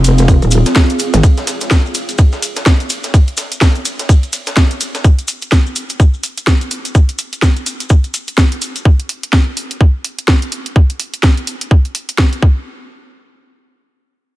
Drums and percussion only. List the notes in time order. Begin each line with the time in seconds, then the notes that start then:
0.04 open hi-hat, ride, maracas
0.18 snare, closed hi-hat, maracas
0.28 kick, ride, maracas
0.42 closed hi-hat, maracas
0.51 open hi-hat, ride, maracas
0.66 snare, closed hi-hat, maracas
0.75 kick, snare, ride, maracas
0.90 closed hi-hat, maracas
0.99 open hi-hat, ride, maracas
1.14 snare, closed hi-hat, maracas
1.23 kick, ride, maracas
1.37 snare, closed hi-hat, maracas
1.47 snare, open hi-hat, ride, maracas
1.61 snare, closed hi-hat, maracas
1.71 kick, snare, ride, maracas
1.86 maracas
1.94 open hi-hat, ride, maracas
2.09 closed hi-hat, ride, maracas
2.18 kick, ride, maracas
2.32 snare, maracas
2.42 open hi-hat, ride, maracas
2.56 snare, closed hi-hat, maracas
2.66 kick, snare, ride, maracas
2.80 closed hi-hat, maracas
2.90 open hi-hat, ride, maracas
3.03 snare, closed hi-hat, maracas
3.14 kick, ride, maracas
3.27 closed hi-hat, maracas
3.37 snare, open hi-hat, ride, maracas
3.52 closed hi-hat, maracas
3.61 kick, snare, open hi-hat, maracas
3.75 closed hi-hat, maracas
3.85 open hi-hat, ride, maracas
3.99 snare, closed hi-hat, maracas
4.09 kick, ride, maracas
4.23 closed hi-hat, maracas
4.33 open hi-hat, ride, maracas
4.46 snare, closed hi-hat, maracas
4.56 kick, snare, ride, maracas
4.71 closed hi-hat, maracas
4.81 open hi-hat, ride, maracas
4.95 snare, closed hi-hat, maracas
5.04 kick, maracas
5.19 closed hi-hat, maracas
5.28 open hi-hat, maracas
5.42 closed hi-hat, maracas
5.52 kick, snare, maracas
5.66 maracas
5.76 open hi-hat, maracas
5.89 closed hi-hat, maracas
6.00 kick, maracas
6.14 maracas
6.23 open hi-hat, maracas
6.37 closed hi-hat, maracas
6.47 kick, snare, maracas
6.61 closed hi-hat, maracas
6.71 open hi-hat, maracas
6.85 closed hi-hat, maracas
6.95 kick, maracas
7.09 closed hi-hat, maracas
7.19 open hi-hat, maracas
7.33 closed hi-hat, maracas
7.42 kick, snare, maracas
7.56 closed hi-hat, maracas
7.66 open hi-hat, maracas
7.80 closed hi-hat, maracas
7.89 kick, maracas
8.04 closed hi-hat, maracas
8.14 open hi-hat, maracas
8.27 closed hi-hat, maracas
8.38 kick, snare, maracas
8.52 closed hi-hat, maracas
8.62 open hi-hat, maracas
8.76 closed hi-hat, maracas
8.85 kick
9.00 closed hi-hat
9.09 open hi-hat
9.23 closed hi-hat
9.33 kick, snare
9.57 open hi-hat
9.71 closed hi-hat
9.81 kick
10.04 open hi-hat
10.19 closed hi-hat
10.28 kick, snare
10.42 closed hi-hat
10.52 open hi-hat
10.66 closed hi-hat
10.76 kick
10.90 closed hi-hat
11.00 open hi-hat
11.14 closed hi-hat
11.23 kick, snare
11.37 closed hi-hat
11.47 open hi-hat
11.61 closed hi-hat
11.71 kick
11.85 closed hi-hat
11.95 open hi-hat
12.09 closed hi-hat
12.18 kick, snare
12.33 closed hi-hat
12.42 kick